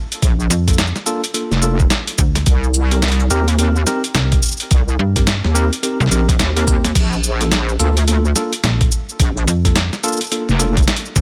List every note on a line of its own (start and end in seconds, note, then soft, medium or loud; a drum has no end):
0.12 closed hi-hat soft
0.12 shaker soft
0.22 0.49 A#1 loud
0.22 kick loud
0.22 closed hi-hat medium
0.22 shaker soft
0.40 shaker soft
0.50 0.93 F2 medium
0.50 closed hi-hat soft
0.50 shaker medium
0.68 0.77 A#3 medium
0.68 0.77 D4 medium
0.68 0.77 F4 medium
0.68 0.77 A4 medium
0.68 kick medium
0.68 snare soft
0.68 closed hi-hat medium
0.68 shaker soft
0.73 shaker soft
0.78 snare loud
0.78 closed hi-hat medium
0.78 shaker soft
0.87 shaker soft
0.96 snare medium
0.96 shaker soft
1.06 1.21 A#3 loud
1.06 1.21 D4 medium
1.06 1.21 F4 medium
1.06 1.21 A4 loud
1.06 closed hi-hat soft
1.06 shaker medium
1.24 closed hi-hat medium
1.24 shaker soft
1.34 1.49 A#3 medium
1.34 1.49 D4 medium
1.34 1.49 F4 medium
1.34 1.49 A4 medium
1.34 closed hi-hat medium
1.34 shaker soft
1.51 1.89 F1 loud
1.51 snare soft
1.51 shaker soft
1.62 1.77 A#3 medium
1.62 1.77 D4 medium
1.62 1.77 F4 medium
1.62 1.77 A4 loud
1.62 shaker medium
1.79 kick loud
1.79 shaker soft
1.90 snare loud
1.90 closed hi-hat medium
1.90 shaker soft
2.07 closed hi-hat medium
2.07 shaker soft
2.18 2.45 D2 loud
2.18 kick loud
2.18 shaker medium
2.35 snare medium
2.35 closed hi-hat soft
2.35 shaker soft
2.46 3.29 C2 loud
2.46 kick loud
2.46 closed hi-hat medium
2.46 shaker soft
2.63 shaker soft
2.74 shaker medium
2.91 3.01 C4 medium
2.91 3.01 D#4 medium
2.91 3.01 G4 medium
2.91 3.01 A#4 medium
2.91 closed hi-hat medium
2.91 shaker soft
3.02 snare loud
3.02 closed hi-hat soft
3.02 shaker soft
3.08 closed hi-hat soft
3.12 closed hi-hat medium
3.20 shaker soft
3.30 3.85 D#2 loud
3.30 3.46 C4 loud
3.30 3.45 D#4 medium
3.30 3.46 G4 medium
3.30 3.46 A#4 loud
3.30 closed hi-hat soft
3.30 shaker medium
3.48 closed hi-hat medium
3.48 shaker soft
3.59 3.74 C4 medium
3.59 3.74 D#4 medium
3.59 3.74 G4 medium
3.59 3.74 A#4 medium
3.59 closed hi-hat medium
3.59 shaker soft
3.76 shaker soft
3.87 4.02 C4 medium
3.87 4.02 D#4 medium
3.87 4.02 G4 medium
3.87 4.02 A#4 loud
3.87 snare medium
3.87 closed hi-hat soft
3.87 shaker medium
4.04 closed hi-hat medium
4.04 shaker soft
4.15 4.41 C2 loud
4.15 snare loud
4.15 closed hi-hat medium
4.15 shaker soft
4.32 kick loud
4.32 closed hi-hat medium
4.32 shaker soft
4.42 shaker medium
4.45 shaker medium
4.48 shaker soft
4.51 shaker soft
4.57 closed hi-hat medium
4.57 shaker soft
4.60 shaker soft
4.71 4.97 C2 loud
4.71 kick loud
4.71 closed hi-hat medium
4.71 shaker soft
4.88 shaker soft
4.99 5.42 G2 medium
5.16 5.25 C4 medium
5.16 5.26 D#4 medium
5.16 5.25 G4 medium
5.16 5.25 A#4 medium
5.16 kick medium
5.16 snare soft
5.16 closed hi-hat medium
5.16 shaker soft
5.27 snare loud
5.27 closed hi-hat medium
5.27 shaker soft
5.44 5.70 D#2 loud
5.44 snare medium
5.55 5.70 C4 loud
5.55 5.70 D#4 medium
5.55 5.70 G4 medium
5.55 5.70 A#4 loud
5.55 closed hi-hat soft
5.55 shaker medium
5.73 closed hi-hat medium
5.73 shaker soft
5.83 5.98 C4 medium
5.83 5.98 D#4 medium
5.83 5.98 G4 medium
5.83 5.98 A#4 medium
5.83 closed hi-hat medium
5.83 shaker soft
6.00 6.09 C2 loud
6.00 shaker soft
6.06 snare soft
6.11 6.38 A#1 loud
6.11 6.26 C4 medium
6.11 6.26 D#4 medium
6.11 6.26 G4 medium
6.11 6.26 A#4 medium
6.11 closed hi-hat soft
6.11 shaker medium
6.29 kick loud
6.29 closed hi-hat medium
6.29 shaker soft
6.39 6.94 D#2 loud
6.39 snare loud
6.39 closed hi-hat medium
6.39 shaker soft
6.56 6.65 C4 medium
6.56 6.65 D#4 medium
6.56 6.65 G4 medium
6.56 6.65 A#4 loud
6.56 closed hi-hat medium
6.56 shaker soft
6.67 6.82 C4 medium
6.67 6.82 D#4 medium
6.67 6.82 G4 medium
6.67 6.82 A#4 medium
6.67 kick loud
6.67 shaker medium
6.85 snare medium
6.85 closed hi-hat medium
6.85 shaker soft
6.95 7.78 A#1 loud
6.95 kick loud
6.95 closed hi-hat medium
6.95 crash medium
6.95 shaker soft
7.13 shaker soft
7.23 shaker medium
7.41 7.50 A#3 medium
7.41 7.50 D4 medium
7.41 7.50 F4 medium
7.41 7.50 A4 medium
7.41 closed hi-hat medium
7.41 shaker soft
7.52 snare loud
7.52 closed hi-hat medium
7.52 shaker soft
7.69 shaker soft
7.79 8.34 D2 loud
7.79 7.94 A#3 loud
7.79 7.94 D4 medium
7.79 7.94 F4 medium
7.79 7.94 A4 loud
7.79 closed hi-hat soft
7.79 shaker medium
7.97 closed hi-hat medium
7.97 shaker soft
8.08 8.23 A#3 medium
8.08 8.22 D4 medium
8.08 8.23 F4 medium
8.08 8.22 A4 medium
8.08 closed hi-hat medium
8.08 shaker soft
8.25 shaker soft
8.36 8.51 A#3 medium
8.36 8.51 D4 medium
8.36 8.51 F4 medium
8.36 8.51 A4 loud
8.36 snare medium
8.36 closed hi-hat soft
8.36 shaker medium
8.53 closed hi-hat medium
8.53 shaker soft
8.64 8.90 A#1 loud
8.64 snare loud
8.64 closed hi-hat medium
8.64 shaker soft
8.81 kick loud
8.81 closed hi-hat medium
8.81 shaker soft
8.91 shaker medium
9.09 shaker soft
9.19 9.46 A#1 loud
9.19 kick loud
9.19 closed hi-hat medium
9.19 shaker soft
9.37 shaker soft
9.47 9.90 F2 medium
9.47 closed hi-hat soft
9.47 shaker medium
9.65 9.74 A#3 medium
9.65 9.74 D4 medium
9.65 9.74 F4 medium
9.65 9.74 A4 medium
9.65 kick medium
9.65 snare soft
9.65 closed hi-hat medium
9.65 shaker soft
9.76 snare loud
9.76 closed hi-hat medium
9.76 shaker soft
9.93 snare medium
9.93 shaker soft
10.04 10.19 A#3 loud
10.04 10.19 D4 medium
10.04 10.19 F4 medium
10.04 10.19 A4 loud
10.04 closed hi-hat soft
10.04 shaker medium
10.08 shaker medium
10.12 shaker soft
10.17 shaker soft
10.21 closed hi-hat medium
10.21 shaker soft
10.24 shaker soft
10.26 shaker soft
10.29 10.47 A#3 medium
10.29 closed hi-hat medium
10.29 shaker soft
10.32 10.47 D4 medium
10.32 10.47 F4 medium
10.32 10.47 A4 medium
10.32 shaker soft
10.49 10.86 F1 loud
10.49 snare soft
10.49 shaker soft
10.59 10.74 A#3 medium
10.59 10.74 D4 medium
10.59 10.74 F4 medium
10.59 10.74 A4 loud
10.59 closed hi-hat soft
10.59 shaker medium
10.77 kick loud
10.77 closed hi-hat medium
10.77 shaker soft
10.82 shaker soft
10.88 snare loud
10.88 closed hi-hat medium
10.88 shaker soft
10.96 closed hi-hat medium
10.96 shaker soft
11.05 shaker soft
11.16 11.21 D2 loud
11.16 kick loud
11.16 shaker medium